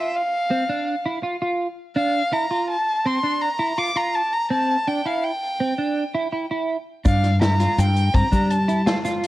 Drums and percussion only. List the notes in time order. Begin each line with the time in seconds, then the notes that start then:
7.05 kick, closed hi-hat, shaker
7.24 snare, closed hi-hat
7.42 snare, closed hi-hat
7.60 snare, closed hi-hat
7.78 closed hi-hat, shaker
7.96 closed hi-hat
8.14 kick, closed hi-hat
8.33 kick, closed hi-hat, shaker
8.51 closed hi-hat
8.69 closed hi-hat, shaker
8.87 snare, closed hi-hat
9.05 snare, closed hi-hat, shaker
9.24 closed hi-hat